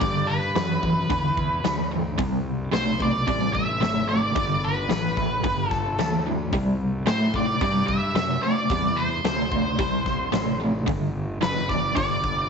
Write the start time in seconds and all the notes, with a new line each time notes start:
Already playing: D5
0.01 G2 D3, kick, open hi-hat
0.27 B4
0.55 F#2 G2 E3, snare, open hi-hat
0.82 G2 E3, kick
1.10 E2 G2 D3, kick, open hi-hat
1.37 kick
1.64 D2 G2 E3, snare, open hi-hat
1.91 G2 E3
2.18 C2 C3 G3, kick, open hi-hat
2.72 B1 C3 A3 C5, snare, open hi-hat
2.99 C3 A3 D5, kick
3.27 A1 C3 G3 D5, kick, open hi-hat
3.53 E5, kick
3.81 G#1 C3 A3, snare, open hi-hat
4.08 C3 A3 D5
4.35 G1 G2 D3, kick, open hi-hat
4.64 B4
4.89 A1 G2 E3, snare, open hi-hat
5.16 G2 E3, kick, snare
5.44 G1 G2 D3, kick, open hi-hat
5.69 A4, kick, snare
5.98 D2 G2 E3, snare, open hi-hat
6.26 G2 E3
6.53 C2 C3 G3, kick, open hi-hat
7.06 A2 C3 A3 C5, snare, open hi-hat
7.34 C3 A3 D5, kick
7.61 G2 C3 G3 D5, kick, open hi-hat
7.87 E5, kick
8.15 F#2 C3 A3, snare, open hi-hat
8.42 C3 A3 D5, muted fingered electric bass stroke
8.70 E2 C3 G3, kick, open hi-hat
8.97 C5
9.24 D2 C3 A3, snare, open hi-hat
9.51 C3 A3, kick
9.78 C2 C3 G3, kick, open hi-hat
10.06 kick, snare
10.32 A1 C3 A3, snare, open hi-hat
10.60 C3 A3
10.86 G1 G2 D3, kick, open hi-hat
11.41 F#1 G2 E3 B4, snare, open hi-hat
11.69 G2 E3 D5, kick, snare
11.95 G1 G2 D3 D5, kick, open hi-hat
12.24 kick